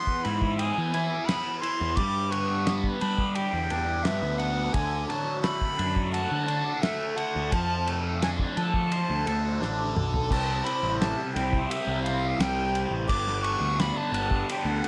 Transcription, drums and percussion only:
0.07 kick medium
0.25 ride medium
0.42 kick medium
0.59 ride medium
0.94 ride medium
1.29 snare medium
1.29 ride medium
1.63 ride medium
1.97 kick loud
1.97 ride medium
2.32 ride medium
2.67 snare medium
2.67 ride medium
2.84 kick medium
3.01 ride medium
3.18 kick medium
3.35 ride medium
3.70 ride medium
4.05 snare medium
4.05 ride medium
4.39 ride soft
4.74 kick loud
4.74 ride medium
5.10 ride medium
5.44 snare loud
5.44 ride medium
5.62 kick medium
5.79 ride medium
5.96 kick medium
6.14 ride medium
6.48 ride medium
6.83 snare loud
6.83 ride medium
7.18 ride medium
7.52 kick loud
7.52 ride medium
7.87 ride medium
8.22 snare medium
8.22 ride medium
8.39 kick medium
8.57 ride medium
8.74 kick medium
8.92 ride medium
9.27 ride medium
9.62 snare medium
9.96 mid tom medium
10.14 floor tom medium
10.31 kick medium
10.31 crash medium
10.66 ride medium
11.02 snare loud
11.02 ride medium
11.36 snare soft
11.36 ride medium
11.53 kick medium
11.71 ride medium
12.06 ride medium
12.40 snare loud
12.40 ride medium
12.75 ride medium
13.09 kick loud
13.09 ride medium
13.28 snare soft
13.44 ride medium
13.80 snare medium
13.80 ride medium
14.14 ride medium
14.31 kick medium
14.49 ride medium
14.84 ride medium

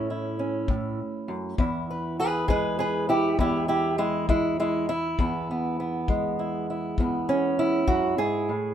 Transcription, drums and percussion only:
0.68 kick medium
1.58 kick medium
2.48 kick medium
3.39 kick medium
4.29 kick medium
5.19 kick medium
6.08 kick medium
6.98 kick medium
7.88 kick medium

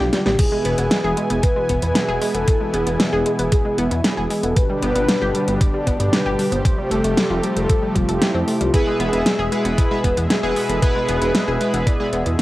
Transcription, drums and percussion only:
0.00 snare soft
0.13 snare medium
0.13 closed hi-hat medium
0.26 snare medium
0.39 kick loud
0.39 closed hi-hat loud
0.39 crash loud
0.65 closed hi-hat medium
0.78 closed hi-hat medium
0.91 snare loud
0.91 closed hi-hat medium
1.17 closed hi-hat medium
1.30 closed hi-hat medium
1.43 kick loud
1.43 closed hi-hat loud
1.69 kick medium
1.69 closed hi-hat medium
1.82 closed hi-hat medium
1.95 snare loud
1.95 closed hi-hat loud
2.22 open hi-hat medium
2.35 closed hi-hat medium
2.48 kick loud
2.48 closed hi-hat medium
2.74 closed hi-hat medium
2.87 closed hi-hat medium
3.00 snare loud
3.00 closed hi-hat medium
3.26 closed hi-hat medium
3.39 closed hi-hat medium
3.52 kick loud
3.52 closed hi-hat loud
3.78 closed hi-hat medium
3.91 closed hi-hat medium
4.04 snare loud
4.04 closed hi-hat loud
4.30 open hi-hat medium
4.43 closed hi-hat medium
4.56 kick loud
4.56 closed hi-hat medium
4.82 closed hi-hat medium
4.95 closed hi-hat medium
5.08 snare loud
5.08 closed hi-hat medium
5.35 closed hi-hat medium
5.48 closed hi-hat medium
5.61 kick loud
5.61 closed hi-hat loud
5.87 kick medium
5.87 closed hi-hat medium
6.00 closed hi-hat medium
6.13 snare loud
6.13 closed hi-hat loud
6.39 open hi-hat medium
6.52 closed hi-hat medium
6.65 kick loud
6.65 closed hi-hat medium
6.91 closed hi-hat medium
7.04 closed hi-hat medium
7.17 snare loud
7.17 closed hi-hat medium
7.43 closed hi-hat medium
7.57 closed hi-hat medium
7.69 kick loud
7.69 closed hi-hat medium
7.96 kick medium
7.96 closed hi-hat medium
8.09 closed hi-hat medium
8.22 snare loud
8.22 closed hi-hat medium
8.48 open hi-hat medium
8.61 closed hi-hat medium
8.74 kick loud
8.74 closed hi-hat medium
9.00 closed hi-hat medium
9.13 closed hi-hat medium
9.26 snare loud
9.26 closed hi-hat medium
9.52 closed hi-hat medium
9.65 closed hi-hat medium
9.78 kick loud
9.78 closed hi-hat medium
10.04 kick medium
10.04 closed hi-hat medium
10.17 closed hi-hat medium
10.30 snare loud
10.30 closed hi-hat medium
10.56 open hi-hat medium
10.69 closed hi-hat medium
10.82 kick loud
10.82 closed hi-hat medium
11.09 closed hi-hat medium
11.22 closed hi-hat medium
11.35 snare loud
11.35 closed hi-hat medium
11.61 closed hi-hat medium
11.74 closed hi-hat medium
11.87 kick loud
11.87 closed hi-hat medium
12.13 closed hi-hat medium
12.26 closed hi-hat medium

